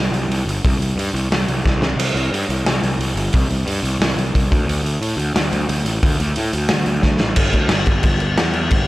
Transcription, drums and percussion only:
0.14 open hi-hat medium
0.32 open hi-hat medium
0.49 open hi-hat medium
0.65 kick loud
0.65 open hi-hat medium
0.82 open hi-hat medium
0.99 open hi-hat medium
1.16 open hi-hat medium
1.32 snare loud
1.32 open hi-hat medium
1.48 open hi-hat medium
1.66 kick medium
1.66 snare medium
1.82 snare medium
1.99 open hi-hat medium
1.99 crash medium
2.17 open hi-hat medium
2.34 open hi-hat medium
2.50 open hi-hat medium
2.66 snare loud
2.66 open hi-hat medium
2.83 open hi-hat medium
3.01 open hi-hat medium
3.17 open hi-hat medium
3.33 kick loud
3.33 open hi-hat medium
3.50 open hi-hat medium
3.68 open hi-hat medium
3.85 open hi-hat medium
4.02 snare loud
4.02 open hi-hat medium
4.19 open hi-hat medium
4.35 kick medium
4.35 open hi-hat medium
4.52 kick loud
4.52 open hi-hat medium
4.69 open hi-hat medium
4.86 open hi-hat medium
5.03 open hi-hat medium
5.19 open hi-hat medium
5.36 snare loud
5.36 open hi-hat medium
5.53 open hi-hat medium
5.69 open hi-hat medium
5.86 open hi-hat medium
6.03 kick loud
6.03 open hi-hat medium
6.20 open hi-hat medium
6.36 open hi-hat medium
6.53 open hi-hat medium
6.69 snare loud
6.69 open hi-hat medium
6.86 open hi-hat medium
7.02 kick medium
7.02 snare medium
7.20 snare loud
7.36 kick loud
7.36 crash loud
7.36 crash medium
7.53 kick medium
7.53 crash medium
7.69 snare loud
7.69 crash medium
7.86 kick medium
7.86 crash medium
8.03 kick loud
8.03 crash medium
8.20 crash medium
8.38 snare loud
8.38 crash medium
8.53 crash medium
8.71 kick loud
8.71 crash medium

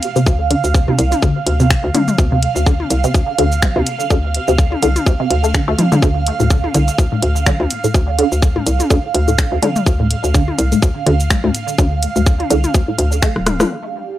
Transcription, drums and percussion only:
0.03 closed hi-hat medium
0.03 cabasa soft
0.16 cabasa soft
0.27 kick loud
0.27 cabasa medium
0.51 closed hi-hat loud
0.64 cabasa soft
0.74 kick loud
0.74 cabasa medium
0.88 high tom medium
0.99 closed hi-hat medium
0.99 cabasa soft
1.12 closed hi-hat soft
1.12 high tom medium
1.12 cabasa soft
1.22 kick loud
1.22 cabasa medium
1.47 closed hi-hat loud
1.60 cabasa soft
1.70 finger snap loud
1.70 kick loud
1.70 cabasa medium
1.95 closed hi-hat loud
1.95 mid tom medium
1.95 high tom medium
1.95 cabasa soft
2.08 mid tom medium
2.08 cabasa soft
2.18 kick loud
2.18 cabasa soft
2.43 closed hi-hat medium
2.56 cabasa soft
2.66 kick loud
2.66 cabasa medium
2.80 high tom medium
2.90 closed hi-hat medium
2.90 cabasa soft
3.04 closed hi-hat soft
3.04 cabasa soft
3.14 kick loud
3.14 cabasa soft
3.38 closed hi-hat loud
3.52 cabasa soft
3.62 finger snap loud
3.62 kick loud
3.62 mid tom medium
3.62 cabasa medium
3.76 high tom medium
3.87 closed hi-hat loud
3.87 cabasa soft
4.00 cabasa soft
4.10 kick loud
4.10 cabasa soft
4.34 closed hi-hat medium
4.48 cabasa soft
4.58 kick loud
4.58 cabasa soft
4.72 high tom medium
4.83 closed hi-hat medium
4.83 cabasa soft
4.96 closed hi-hat soft
4.96 high tom medium
4.96 cabasa soft
5.06 kick loud
5.06 cabasa soft
5.30 closed hi-hat medium
5.44 cabasa soft
5.54 finger snap loud
5.54 kick loud
5.54 cabasa soft
5.78 closed hi-hat medium
5.78 mid tom medium
5.78 high tom medium
5.78 cabasa soft
5.92 mid tom medium
5.92 high tom medium
5.92 cabasa soft
6.02 kick loud
6.02 cabasa soft
6.26 closed hi-hat medium
6.40 cabasa soft
6.50 kick loud
6.50 cabasa soft
6.64 high tom medium
6.74 closed hi-hat medium
6.74 cabasa soft
6.88 closed hi-hat soft
6.88 cabasa soft
6.98 kick loud
6.98 cabasa medium
7.22 closed hi-hat medium
7.36 cabasa soft
7.46 finger snap loud
7.46 kick loud
7.46 mid tom medium
7.46 cabasa medium
7.60 high tom medium
7.71 closed hi-hat medium
7.71 cabasa soft
7.84 cabasa soft
7.94 kick loud
7.94 cabasa medium
8.19 closed hi-hat medium
8.32 cabasa soft
8.42 kick loud
8.42 cabasa medium
8.56 high tom medium
8.67 closed hi-hat medium
8.67 cabasa soft
8.80 closed hi-hat soft
8.80 high tom soft
8.80 cabasa soft
8.90 kick loud
8.90 cabasa medium
9.15 closed hi-hat medium
9.28 cabasa soft
9.38 finger snap loud
9.38 kick loud
9.38 cabasa medium
9.62 closed hi-hat medium
9.62 mid tom medium
9.62 high tom medium
9.62 cabasa soft
9.76 mid tom medium
9.76 cabasa soft
9.86 kick loud
9.86 cabasa medium
10.11 closed hi-hat medium
10.24 cabasa soft
10.34 kick loud
10.34 cabasa medium
10.48 high tom soft
10.59 closed hi-hat medium
10.59 cabasa soft
10.72 closed hi-hat soft
10.72 cabasa soft
10.82 kick loud
10.82 cabasa medium
11.07 closed hi-hat medium
11.20 cabasa soft
11.30 finger snap loud
11.30 kick loud
11.30 mid tom medium
11.30 cabasa medium
11.44 high tom medium
11.55 closed hi-hat medium
11.55 cabasa soft
11.68 cabasa soft
11.78 kick loud
11.78 cabasa medium
12.03 closed hi-hat medium
12.03 cabasa soft
12.16 cabasa soft
12.26 kick loud
12.26 cabasa medium
12.40 closed hi-hat soft
12.40 high tom medium
12.51 closed hi-hat medium
12.51 cabasa soft
12.64 closed hi-hat soft
12.64 high tom soft
12.64 cabasa soft
12.74 kick loud
12.74 cabasa medium
12.99 closed hi-hat medium
12.99 cabasa soft
13.12 cabasa soft
13.22 finger snap loud
13.22 kick loud
13.22 cabasa medium
13.36 cross-stick medium
13.46 cross-stick medium
13.46 closed hi-hat medium
13.46 mid tom medium
13.46 high tom medium
13.46 cabasa soft
13.60 cross-stick medium
13.60 mid tom medium
13.60 high tom soft
13.60 cabasa soft

